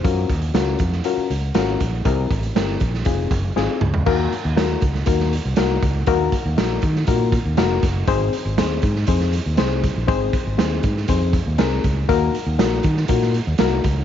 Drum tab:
CC |----------------|----------------|x---------------|----------------|
HH |x-xxx-x-x-x-x-x-|x-xxx-x-x-x-----|--x-x-x-x-x-x-x-|x-x-x-x-x-x-x-x-|
SD |----o--o----o---|----o--o----o---|----o--o-o--o---|----o--o----o-o-|
T2 |----------------|--------------o-|----------------|----------------|
FT |----------------|---------------o|----------------|----------------|
BD |o-o---o-------o-|o-o---o-o-o-----|o-----o-o-----o-|o-o---o-o-o---o-|

CC |----------------|----------------|----------------|
HH |x-x-x-x-x-x-x-x-|x-x-x-x-x-x-x-x-|x-x-x-x-x-x-x-x-|
SD |----o--o-o--o---|----o--o----o---|----o--o-o--o---|
T2 |----------------|----------------|----------------|
FT |----------------|----------------|----------------|
BD |o-----o-o-----o-|o-o---o-o-o---o-|o-----o-o-----o-|